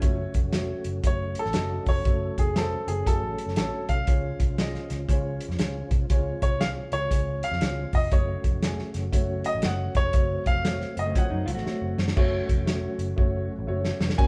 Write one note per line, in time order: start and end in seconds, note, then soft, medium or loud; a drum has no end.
0.00 0.26 F#1 medium
0.00 0.18 F3 medium
0.00 4.02 F#3 medium
0.00 4.02 A3 medium
0.00 0.37 A3 medium
0.00 0.18 C#4 medium
0.00 6.06 C#4 medium
0.00 2.02 F#4 medium
0.00 0.37 F#4 medium
0.00 0.37 C#5 loud
0.00 kick loud
0.00 closed hi-hat medium
0.34 0.72 F1 medium
0.34 kick medium
0.34 closed hi-hat medium
0.52 0.87 A3 medium
0.52 0.88 F#4 medium
0.52 0.88 C#5 medium
0.52 snare loud
0.52 closed hi-hat medium
0.84 0.99 F#1 medium
0.84 closed hi-hat medium
1.03 1.34 F#1 medium
1.03 1.38 A3 medium
1.03 1.38 F#4 medium
1.03 1.39 C#5 medium
1.03 kick medium
1.03 closed hi-hat medium
1.35 closed hi-hat medium
1.39 1.90 A4 loud
1.45 1.53 A1 medium
1.45 snare soft
1.53 1.78 F#1 medium
1.53 1.89 A3 medium
1.53 1.89 F#4 medium
1.53 1.90 D#5 medium
1.53 snare loud
1.53 closed hi-hat medium
1.86 2.00 F1 medium
1.86 2.40 C#5 medium
1.86 kick medium
1.86 open hi-hat medium
2.05 2.28 F#1 medium
2.05 2.40 A3 medium
2.05 2.40 F#4 medium
2.05 4.06 A4 medium
2.05 2.41 C#5 medium
2.05 kick loud
2.05 closed hi-hat medium
2.38 2.74 F1 medium
2.38 2.57 G#4 medium
2.38 kick medium
2.38 closed hi-hat medium
2.55 2.90 A3 medium
2.55 2.90 F#4 medium
2.55 2.87 A4 medium
2.55 2.91 C5 medium
2.55 snare loud
2.55 closed hi-hat medium
2.88 3.01 F#1 medium
2.88 3.07 G#4 medium
2.88 closed hi-hat medium
3.06 3.18 F#1 medium
3.06 3.41 A3 medium
3.06 3.42 F#4 medium
3.06 3.42 G#4 medium
3.06 3.54 A4 medium
3.06 kick medium
3.06 closed hi-hat medium
3.22 3.34 A1 medium
3.38 closed hi-hat medium
3.46 3.54 F#1 medium
3.46 snare soft
3.56 3.68 A1 medium
3.56 3.92 A3 medium
3.56 3.92 F#4 medium
3.56 3.87 A4 medium
3.56 3.92 C#5 medium
3.56 snare loud
3.56 closed hi-hat loud
3.89 4.02 C2 medium
3.89 5.05 F5 loud
3.89 kick medium
3.89 closed hi-hat medium
4.07 4.31 C#2 loud
4.07 8.08 F3 medium
4.07 4.42 G#3 medium
4.07 8.08 G#3 medium
4.07 8.08 F4 medium
4.07 4.42 F4 medium
4.07 4.42 C#5 medium
4.07 kick loud
4.07 closed hi-hat medium
4.40 4.77 C2 medium
4.40 kick medium
4.40 closed hi-hat medium
4.58 4.93 G#3 medium
4.58 4.93 F4 medium
4.58 4.93 D#5 loud
4.58 snare loud
4.58 closed hi-hat medium
4.75 snare soft
4.90 5.04 C#2 medium
4.90 snare soft
4.90 closed hi-hat medium
5.08 5.38 C#2 medium
5.08 5.43 G#3 medium
5.08 5.44 F4 medium
5.08 5.44 C#5 loud
5.08 kick medium
5.08 closed hi-hat loud
5.41 closed hi-hat medium
5.49 5.56 F2 medium
5.49 snare soft
5.58 5.82 C#2 medium
5.58 5.94 G#3 medium
5.58 5.94 F4 medium
5.58 5.94 C#5 medium
5.58 snare loud
5.58 closed hi-hat medium
5.91 6.05 C2 medium
5.91 kick loud
5.91 closed hi-hat medium
6.10 6.33 C#2 loud
6.10 8.11 C3 medium
6.10 6.44 G#3 medium
6.10 6.44 F4 medium
6.10 6.45 C#5 loud
6.10 kick loud
6.10 closed hi-hat medium
6.42 6.78 C2 medium
6.42 6.61 C#5 medium
6.42 kick medium
6.42 closed hi-hat medium
6.60 6.94 G#3 medium
6.60 6.95 F4 medium
6.60 6.95 C#5 medium
6.60 6.68 F5 loud
6.60 snare loud
6.60 closed hi-hat medium
6.92 7.06 C#2 medium
6.92 7.45 C#5 loud
6.92 closed hi-hat medium
7.09 7.41 C#2 medium
7.09 7.44 G#3 medium
7.09 7.45 F4 medium
7.09 7.46 C#5 medium
7.09 kick medium
7.09 closed hi-hat medium
7.43 7.95 F5 loud
7.43 closed hi-hat medium
7.51 7.58 F2 medium
7.51 snare soft
7.60 7.84 C#2 medium
7.60 7.95 G#3 medium
7.60 7.96 F4 medium
7.60 7.96 C#5 medium
7.60 snare loud
7.60 closed hi-hat medium
7.93 8.07 F1 medium
7.93 8.13 D#5 medium
7.93 kick medium
7.93 open hi-hat medium
8.11 8.35 F#1 medium
8.11 12.13 F#3 medium
8.11 8.46 A3 medium
8.11 12.13 A3 medium
8.11 10.12 C#4 medium
8.11 8.46 F#4 medium
8.11 12.13 F#4 medium
8.11 8.47 C#5 medium
8.11 8.91 C#5 medium
8.11 kick loud
8.11 closed hi-hat medium
8.44 8.81 F1 medium
8.44 kick medium
8.44 closed hi-hat medium
8.63 8.97 A3 medium
8.63 8.97 F#4 medium
8.63 8.98 G#4 medium
8.63 snare loud
8.63 closed hi-hat medium
8.79 snare soft
8.94 9.08 F#1 medium
8.94 snare soft
8.94 closed hi-hat medium
9.12 9.42 F#1 medium
9.12 9.47 A3 medium
9.12 9.47 F#4 medium
9.12 9.48 C#5 medium
9.12 kick medium
9.12 closed hi-hat medium
9.44 9.63 D#5 loud
9.44 closed hi-hat medium
9.55 9.61 A1 medium
9.62 9.87 F#1 medium
9.62 9.98 A3 medium
9.62 9.98 F#4 medium
9.62 9.99 C#5 medium
9.62 9.97 F#5 medium
9.62 snare loud
9.62 closed hi-hat medium
9.95 10.09 F1 medium
9.95 10.43 C#5 loud
9.95 kick medium
9.95 closed hi-hat medium
10.13 10.37 F#1 loud
10.13 10.48 A3 medium
10.13 12.14 C4 medium
10.13 10.49 F#4 medium
10.13 10.49 C#5 medium
10.13 kick loud
10.13 closed hi-hat medium
10.46 10.83 F1 medium
10.46 10.94 F5 loud
10.46 kick medium
10.46 closed hi-hat medium
10.65 10.99 A3 medium
10.65 11.00 F#4 medium
10.65 11.00 C#5 medium
10.65 snare loud
10.65 closed hi-hat medium
10.81 snare soft
10.97 11.10 F#1 medium
10.97 11.15 D#5 medium
10.97 closed hi-hat medium
11.06 11.15 C#3 medium
11.06 11.15 A3 medium
11.15 11.30 F3 medium
11.15 11.49 A3 medium
11.15 11.30 C#4 medium
11.15 11.50 F#4 medium
11.15 11.50 C#5 medium
11.15 11.95 F#5 medium
11.15 kick loud
11.15 closed hi-hat medium
11.30 11.43 F#2 medium
11.30 11.46 F#3 medium
11.30 11.46 D#4 medium
11.46 11.54 C#2 loud
11.46 11.54 A3 medium
11.46 11.54 F4 medium
11.46 closed hi-hat medium
11.55 11.63 A1 medium
11.55 12.13 A3 medium
11.55 12.13 F#4 medium
11.55 snare soft
11.65 12.00 A3 medium
11.65 12.00 F#4 medium
11.65 12.01 C#5 medium
11.65 muted picked electric bass stroke soft
11.65 snare medium
11.82 11.93 F#1 medium
11.98 12.11 F#2 loud
11.98 snare medium
12.08 snare medium
12.16 12.40 F#1 medium
12.16 14.17 F#3 medium
12.16 12.51 A3 loud
12.16 14.17 A3 medium
12.16 14.16 C#4 medium
12.16 14.16 F#4 medium
12.16 12.51 F#4 loud
12.16 12.52 C#5 loud
12.16 kick loud
12.16 crash medium
12.49 12.86 F1 medium
12.49 kick medium
12.49 closed hi-hat medium
12.66 13.01 A3 medium
12.66 13.01 F#4 medium
12.66 13.01 C#5 medium
12.66 snare loud
12.66 closed hi-hat medium
12.99 13.12 F#1 medium
12.99 closed hi-hat medium
13.16 13.48 F#1 medium
13.16 13.51 A3 medium
13.16 13.52 F#4 medium
13.16 13.52 C#5 medium
13.16 kick loud
13.59 13.65 A1 medium
13.67 13.91 F#1 medium
13.67 14.02 A3 medium
13.67 14.02 F#4 medium
13.67 14.03 C#5 loud
13.85 snare medium
14.00 14.14 F1 medium
14.00 snare loud
14.10 snare medium
14.17 14.27 F#1 medium
14.17 14.27 C#3 medium
14.17 14.27 A#3 loud
14.17 14.27 A#3 medium
14.17 14.27 C#4 medium
14.17 14.27 F#4 medium
14.17 14.27 A#4 medium
14.17 14.27 C#5 loud
14.17 14.27 G#5 loud
14.17 kick loud
14.17 ride medium